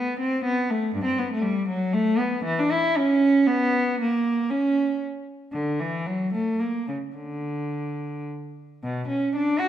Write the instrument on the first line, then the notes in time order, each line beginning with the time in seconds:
cello
Already playing: B3
0.20 C4
0.45 B3
0.70 A3
0.95 G2
1.04 C4
1.19 B3
1.32 A3
1.42 G3
1.69 F#3
1.93 A3
2.18 B3
2.44 E3
2.59 D4
2.71 E4
2.97 C#4
3.47 B3
4.01 A#3
4.50 C#4
5.52 D3
5.80 E3
6.06 F#3
6.34 A3
6.59 A#3
6.88 C#3
7.16 D3
8.84 B2
9.08 C#4
9.36 D4
9.59 F#4